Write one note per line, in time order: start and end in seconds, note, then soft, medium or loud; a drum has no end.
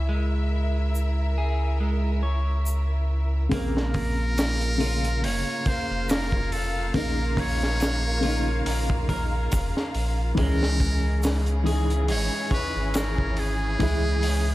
0.00 3.48 C#2 medium
0.00 3.49 C#4 medium
0.00 3.48 E4 medium
0.00 3.48 E5 medium
0.09 1.34 G#3 medium
0.09 3.49 A#4 medium
0.95 shaker medium
1.38 1.77 G#4 medium
1.80 2.21 G#3 medium
2.23 3.48 C#5 medium
2.66 shaker medium
3.49 5.25 A#1 loud
3.49 4.74 C#3 medium
3.49 4.77 A#3 medium
3.49 10.34 A#3 medium
3.49 4.76 A#3 medium
3.49 10.34 F4 medium
3.49 10.34 F5 medium
3.49 kick loud
3.49 open hi-hat medium
3.53 4.78 C4 medium
3.53 5.26 A#4 loud
3.77 snare medium
3.94 kick medium
3.94 open hi-hat medium
4.38 snare loud
4.38 open hi-hat medium
4.38 shaker medium
4.61 closed hi-hat soft
4.78 6.89 C#3 medium
4.78 6.91 A#3 medium
4.78 5.19 F4 medium
4.78 open hi-hat medium
4.85 6.92 C#4 medium
5.04 closed hi-hat soft
5.23 5.44 F1 medium
5.23 5.64 A#3 medium
5.23 5.69 C#5 loud
5.23 open hi-hat medium
5.66 6.91 A#3 medium
5.66 6.12 C5 loud
5.66 kick medium
5.66 open hi-hat medium
5.90 6.91 F1 medium
6.09 6.54 A#4 loud
6.09 snare loud
6.09 open hi-hat medium
6.09 shaker medium
6.32 kick medium
6.52 6.95 A4 medium
6.52 open hi-hat medium
6.94 8.62 A#1 loud
6.94 7.21 C#3 loud
6.94 8.20 A#3 medium
6.94 7.21 A#3 medium
6.94 7.22 D#4 loud
6.94 7.41 A#4 loud
6.94 10.35 A#4 medium
6.94 kick loud
6.94 open hi-hat medium
7.37 9.10 C#5 loud
7.37 kick medium
7.37 open hi-hat medium
7.63 snare soft
7.80 snare loud
7.80 open hi-hat medium
7.80 shaker medium
8.21 10.32 C#3 loud
8.21 10.33 A#3 medium
8.21 8.62 F4 medium
8.21 open hi-hat medium
8.27 10.35 D#4 loud
8.66 9.48 A#1 medium
8.66 9.07 A#3 medium
8.66 open hi-hat medium
8.90 kick medium
9.09 10.34 A#4 medium
9.09 kick medium
9.09 open hi-hat medium
9.52 9.73 F1 medium
9.52 kick loud
9.52 open hi-hat medium
9.52 shaker medium
9.77 snare soft
9.94 10.33 A#1 loud
9.94 open hi-hat medium
10.35 12.11 C#2 loud
10.35 14.55 C#3 medium
10.35 11.60 E3 medium
10.35 14.55 E3 medium
10.35 11.62 G#3 loud
10.35 11.62 G#3 medium
10.35 14.55 C#4 medium
10.35 14.55 G#4 medium
10.35 11.62 A#4 loud
10.35 kick loud
10.35 open hi-hat medium
10.41 11.63 C#4 loud
10.63 snare medium
10.80 kick medium
10.80 open hi-hat medium
11.23 snare loud
11.23 open hi-hat medium
11.23 shaker medium
11.46 closed hi-hat soft
11.63 13.75 E3 medium
11.63 13.76 G#3 medium
11.63 12.05 G#4 medium
11.63 open hi-hat medium
11.70 13.78 D#4 medium
11.90 closed hi-hat soft
12.08 12.30 G#1 medium
12.08 12.50 G#3 medium
12.08 12.50 C#5 loud
12.08 open hi-hat medium
12.51 12.98 B4 loud
12.51 13.76 C#5 medium
12.51 kick medium
12.51 open hi-hat medium
12.76 13.77 G#1 medium
12.94 13.41 A#4 loud
12.94 snare loud
12.94 open hi-hat medium
12.94 shaker medium
13.18 kick medium
13.37 14.55 G#4 loud
13.37 open hi-hat medium
13.79 14.55 C#2 medium
13.79 14.06 E3 medium
13.79 14.55 G#3 loud
13.79 14.07 G#3 medium
13.79 14.08 E4 loud
13.79 kick medium
13.79 open hi-hat medium
14.23 open hi-hat medium